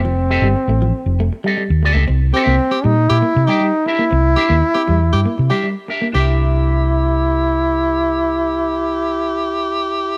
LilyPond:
<<
  \new Staff \with { instrumentName = "Clean electric guitar" } { \time 4/4 \key c \mixolydian \tempo 4 = 118 r8 <c' g' a' ees''>16 r2 <c' g' a' ees''>16 r8 <c' g' a' ees''>8 | r8 <d' g' bes' e''>8 r4. r16 <d' g' bes' g''>16 r8 <d' g' bes' e''>16 r16 | r8 <d' g' bes' e''>16 r2 <d' g' bes' e''>16 r8 <d' g' bes' e''>16 r16 | <d' g' bes' e''>1~ |
<d' g' bes' e''>1 | }
  \new Staff \with { instrumentName = "Tenor saxophone" } { \time 4/4 \key c \mixolydian r1 | r8 g'16 r8 g'16 r8 g'16 r8 g'8 r8. | r8 g'16 r8 g'16 r8 g'16 r8 g'8 r8. | g'1~ |
g'1 | }
  \new Staff \with { instrumentName = "Trombone" } { \time 4/4 \key c \mixolydian c'2~ c'8 r4. | r8 c'4 ees'8 e'8. ees'8. e'8~ | e'2. r4 | e'1~ |
e'1 | }
  \new Staff \with { instrumentName = "Clean electric guitar" } { \time 4/4 \key c \mixolydian f16 r8 g16 r16 a16 f16 r8 a16 r16 g16 g16 r8 a16 | c'16 r8 bes16 r16 c'16 g16 r8 bes16 r16 g16 g16 r8 bes16 | c'16 r8 bes16 r16 c'16 g16 r8 bes16 r16 g16 g16 r8 bes16 | c'8 r2. r8 |
r1 | }
  \new Staff \with { instrumentName = "Fingered electric bass" } { \clef bass \time 4/4 \key c \mixolydian f,,8. g,,16 r16 a,,8 r16 f,,8 r8. ees,16 d,16 des,16 | c,8 r16 c,16 r8 bes,8 bes,16 r16 c16 r4 r16 | c,8 r16 ees,16 r8 e,8 g,16 r16 c16 r4 r16 | c,1~ |
c,1 | }
>>